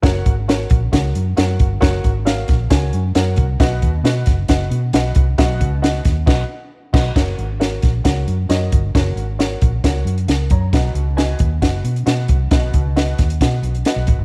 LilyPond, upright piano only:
<<
  \new Staff \with { instrumentName = "Upright piano" } { \time 4/4 \key fis \major \tempo 4 = 135 << { r1 | r1 | r1 | r1 |
r1 | r2. <ais' fis''>8 <cis'' ais''>8~ | <cis'' ais''>8 r2. r8 | r1 | } \\ { <fis' ais' cis'' fis''>8 r8 <fis' ais' cis'' fis''>8 r8 <fis' ais' cis'' fis''>8 r8 <fis' ais' cis'' fis''>8 r8 | <fis' ais' cis'' fis''>8 r8 <fis' ais' cis'' eis''>8 r8 <fis' ais' cis'' gis''>8 r8 <fis' ais' cis'' fis''>8 r8 | <fis' b' dis'' fis''>8 r8 <fis' b' dis'' fis''>8 r8 <fis' b' dis'' fis''>8 r8 <fis' b' dis'' fis''>8 r8 | <fis' b' dis'' fis''>8 r8 <fis' b' dis'' fis''>8 r8 <fis' b' dis'' fis''>8 r4 <fis' b' dis'' fis''>8 |
<fis' ais' cis'' fis''>8 r8 <fis' ais' cis'' fis''>8 r8 <fis' ais' cis'' fis''>8 r8 <fis' ais' cis'' dis''>8 r8 | <fis' ais' cis'' fis''>8 r8 <fis' ais' cis'' fis''>8 r8 <fis' ais' cis'' fis''>8 r4. | <fis' b' dis'' fis''>8 r8 <fis' b' dis'' gis''>8 r8 <fis' b' dis'' fis''>8 r8 <fis' b' dis'' fis''>8 r8 | <fis' b' dis'' fis''>8 r8 <fis' b' dis'' fis''>8 r8 <fis' b' dis'' fis''>8 r8 <fis' b' dis'' fis''>8 r8 | } >> }
  \new Staff \with { instrumentName = "Upright piano" } { \clef bass \time 4/4 \key fis \major r1 | r1 | b,4. r2 r8 | b,4. r2 r8 |
r1 | r1 | b,4. r2 r8 | b,4. r2 r8 | }
>>